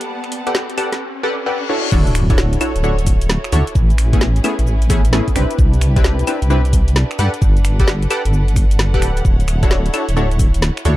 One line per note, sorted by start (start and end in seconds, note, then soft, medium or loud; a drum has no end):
0.00 0.99 G3 medium
0.00 0.99 B4 medium
0.00 0.98 D5 medium
0.00 0.99 F#5 medium
0.00 0.99 A5 medium
0.00 closed hi-hat medium
0.00 riser medium
0.24 finger snap soft
0.24 closed hi-hat soft
0.32 open hi-hat loud
0.47 0.59 G4 medium
0.47 0.59 A4 medium
0.47 0.59 B4 medium
0.47 0.59 D5 medium
0.47 0.59 F#5 loud
0.47 closed hi-hat medium
0.55 snare loud
0.70 closed hi-hat medium
0.78 0.90 G4 medium
0.78 0.90 A4 medium
0.78 0.90 B4 medium
0.78 0.90 D5 medium
0.78 0.90 F#5 loud
0.78 open hi-hat loud
0.78 claves medium
0.92 snare medium
0.92 closed hi-hat medium
1.01 reverse cymbal medium
1.23 1.35 G4 loud
1.23 1.35 A4 medium
1.23 1.35 B4 medium
1.23 1.35 D5 loud
1.23 1.35 F#5 loud
1.46 1.67 G4 medium
1.46 1.67 A4 medium
1.46 1.67 B4 medium
1.46 1.67 D5 medium
1.46 1.67 F#5 medium
1.69 1.91 D4 medium
1.69 1.91 E4 medium
1.69 1.91 F#4 medium
1.69 1.91 A4 medium
1.69 1.91 C#5 loud
1.92 2.57 D1 loud
1.92 2.24 D4 loud
1.92 7.15 E4 medium
1.92 2.24 E4 loud
1.92 3.73 F#4 medium
1.92 2.24 F#4 medium
1.92 3.74 A4 medium
1.92 2.24 A4 loud
1.92 3.74 C#5 medium
1.92 2.24 C#5 loud
1.92 kick loud
1.92 crash loud
1.92 sub drop medium
1.92 shaker soft
2.07 closed hi-hat soft
2.07 shaker soft
2.15 finger snap medium
2.15 open hi-hat loud
2.15 shaker medium
2.30 2.59 D4 medium
2.30 2.59 E4 medium
2.30 2.59 F#4 medium
2.30 2.59 A4 medium
2.30 2.59 C#5 loud
2.30 kick loud
2.30 closed hi-hat medium
2.30 shaker soft
2.38 snare loud
2.38 shaker soft
2.53 closed hi-hat medium
2.53 shaker soft
2.61 2.73 D4 medium
2.61 2.73 E4 medium
2.61 2.73 F#4 medium
2.61 2.73 A4 medium
2.61 2.73 C#5 medium
2.61 open hi-hat loud
2.61 claves medium
2.61 shaker medium
2.76 3.38 D1 medium
2.76 closed hi-hat medium
2.76 shaker soft
2.84 2.96 D4 medium
2.84 2.96 E4 medium
2.84 2.96 F#4 medium
2.84 2.96 A4 medium
2.84 2.96 C#5 loud
2.84 shaker soft
2.99 closed hi-hat medium
2.99 shaker soft
3.07 kick loud
3.07 open hi-hat loud
3.07 shaker medium
3.21 closed hi-hat medium
3.21 shaker soft
3.30 snare loud
3.30 shaker soft
3.44 finger snap medium
3.44 closed hi-hat soft
3.44 shaker soft
3.52 3.63 D2 medium
3.52 3.64 D4 medium
3.52 3.64 E4 medium
3.52 3.64 F#4 medium
3.52 3.64 A4 medium
3.52 3.64 C#5 loud
3.52 open hi-hat loud
3.52 shaker medium
3.67 closed hi-hat medium
3.67 shaker soft
3.75 4.40 A1 loud
3.75 5.34 C#4 medium
3.75 5.34 G#4 medium
3.75 9.21 B4 medium
3.75 kick loud
3.75 shaker soft
3.90 closed hi-hat soft
3.90 shaker soft
3.98 finger snap medium
3.98 open hi-hat loud
3.98 shaker medium
4.13 4.25 A3 medium
4.13 4.25 B3 medium
4.13 4.25 C#4 medium
4.13 4.25 E4 medium
4.13 4.25 G#4 medium
4.13 kick loud
4.13 closed hi-hat medium
4.13 shaker soft
4.21 snare loud
4.21 shaker soft
4.36 closed hi-hat medium
4.36 shaker soft
4.44 4.56 A3 medium
4.44 4.56 B3 medium
4.44 4.56 C#4 medium
4.44 4.56 E4 medium
4.44 4.56 G#4 loud
4.44 open hi-hat loud
4.44 claves medium
4.44 shaker medium
4.59 5.21 A1 medium
4.59 closed hi-hat medium
4.59 shaker soft
4.67 shaker soft
4.82 closed hi-hat medium
4.82 shaker soft
4.90 5.02 A3 loud
4.90 5.02 B3 loud
4.90 5.02 C#4 medium
4.90 5.02 E4 loud
4.90 5.02 G#4 loud
4.90 finger snap soft
4.90 kick loud
4.90 open hi-hat loud
4.90 shaker medium
5.05 closed hi-hat medium
5.05 shaker soft
5.13 5.34 A3 medium
5.13 5.34 B3 medium
5.13 5.34 C#4 medium
5.13 5.34 E4 medium
5.13 5.34 G#4 medium
5.13 snare loud
5.13 shaker soft
5.28 kick medium
5.28 closed hi-hat soft
5.28 shaker soft
5.36 5.46 C2 medium
5.36 5.93 C4 medium
5.36 9.21 D4 medium
5.36 5.93 D4 medium
5.36 5.93 E4 medium
5.36 7.17 G4 medium
5.36 5.93 G4 medium
5.36 5.93 B4 medium
5.36 finger snap medium
5.36 open hi-hat loud
5.36 shaker medium
5.51 closed hi-hat medium
5.51 shaker soft
5.59 6.24 C2 loud
5.59 kick loud
5.59 shaker soft
5.74 closed hi-hat soft
5.74 shaker soft
5.81 finger snap medium
5.81 open hi-hat loud
5.81 shaker medium
5.96 6.25 C4 medium
5.96 6.25 D4 medium
5.96 6.25 E4 medium
5.96 6.25 G4 medium
5.96 6.25 B4 loud
5.96 kick loud
5.96 closed hi-hat medium
5.96 shaker soft
6.04 snare loud
6.04 shaker soft
6.19 closed hi-hat medium
6.19 shaker soft
6.27 6.39 C4 medium
6.27 6.39 D4 medium
6.27 6.39 E4 medium
6.27 6.39 G4 medium
6.27 6.39 B4 medium
6.27 open hi-hat loud
6.27 claves medium
6.27 shaker medium
6.42 7.04 C2 medium
6.42 closed hi-hat medium
6.42 shaker soft
6.50 6.62 C4 medium
6.50 6.62 D4 medium
6.50 6.62 E4 medium
6.50 6.62 G4 medium
6.50 6.62 B4 loud
6.50 shaker soft
6.65 closed hi-hat soft
6.65 shaker soft
6.73 kick loud
6.73 open hi-hat loud
6.73 shaker medium
6.88 closed hi-hat medium
6.88 shaker soft
6.96 snare loud
6.96 shaker soft
7.11 finger snap medium
7.11 closed hi-hat soft
7.11 shaker soft
7.19 7.29 G2 medium
7.19 7.31 G4 medium
7.19 10.97 A4 medium
7.19 7.31 A4 medium
7.19 7.31 B4 medium
7.19 7.31 D5 medium
7.19 10.97 F#5 medium
7.19 7.31 F#5 loud
7.19 open hi-hat loud
7.19 shaker medium
7.34 closed hi-hat medium
7.34 shaker soft
7.42 8.07 G1 loud
7.42 kick loud
7.42 shaker soft
7.57 closed hi-hat soft
7.57 shaker soft
7.65 finger snap medium
7.65 open hi-hat loud
7.65 shaker medium
7.80 7.92 G4 medium
7.80 7.92 A4 medium
7.80 7.92 B4 medium
7.80 7.92 D5 medium
7.80 7.92 F#5 loud
7.80 kick loud
7.80 closed hi-hat medium
7.80 shaker soft
7.88 snare loud
7.88 shaker soft
8.03 closed hi-hat medium
8.03 shaker soft
8.10 8.22 G4 medium
8.10 8.22 A4 medium
8.10 8.22 B4 medium
8.10 8.22 D5 medium
8.10 8.22 F#5 loud
8.10 open hi-hat loud
8.10 claves medium
8.10 shaker medium
8.25 8.96 G1 medium
8.25 closed hi-hat medium
8.25 shaker soft
8.33 shaker soft
8.48 closed hi-hat medium
8.48 shaker soft
8.56 finger snap soft
8.56 kick loud
8.56 open hi-hat loud
8.56 shaker medium
8.71 closed hi-hat medium
8.71 shaker soft
8.79 snare loud
8.79 shaker soft
8.94 9.21 D1 loud
8.94 9.24 G4 loud
8.94 9.24 A4 medium
8.94 9.24 B4 medium
8.94 9.24 D5 medium
8.94 9.24 F#5 loud
8.94 kick medium
8.94 closed hi-hat soft
8.94 shaker soft
9.02 finger snap medium
9.02 open hi-hat loud
9.02 shaker medium
9.17 closed hi-hat medium
9.17 shaker soft
9.25 9.90 D1 loud
9.25 10.97 E4 medium
9.25 10.97 C#5 medium
9.25 kick loud
9.25 shaker soft
9.40 closed hi-hat soft
9.40 shaker soft
9.48 finger snap medium
9.48 open hi-hat loud
9.48 shaker medium
9.63 9.92 D4 loud
9.63 9.92 E4 medium
9.63 9.92 F#4 medium
9.63 9.92 A4 medium
9.63 9.92 C#5 loud
9.63 kick loud
9.63 closed hi-hat medium
9.63 shaker soft
9.71 snare loud
9.71 shaker soft
9.86 closed hi-hat medium
9.86 shaker soft
9.94 10.06 D4 medium
9.94 10.06 E4 medium
9.94 10.06 F#4 medium
9.94 10.06 A4 medium
9.94 10.06 C#5 medium
9.94 open hi-hat loud
9.94 claves medium
9.94 shaker medium
10.09 10.70 D1 medium
10.09 closed hi-hat medium
10.09 shaker soft
10.17 10.29 D4 medium
10.17 10.29 E4 medium
10.17 10.29 F#4 medium
10.17 10.29 A4 medium
10.17 10.29 C#5 loud
10.17 shaker soft
10.31 closed hi-hat medium
10.31 shaker soft
10.39 kick loud
10.39 open hi-hat loud
10.39 shaker medium
10.54 closed hi-hat medium
10.54 shaker soft
10.62 snare loud
10.62 shaker soft
10.77 finger snap medium
10.77 closed hi-hat soft
10.77 shaker soft
10.85 10.96 D2 medium
10.85 10.97 D4 medium
10.85 10.97 E4 medium
10.85 10.97 F#4 medium
10.85 10.97 A4 medium
10.85 10.97 C#5 loud
10.85 open hi-hat loud
10.85 shaker medium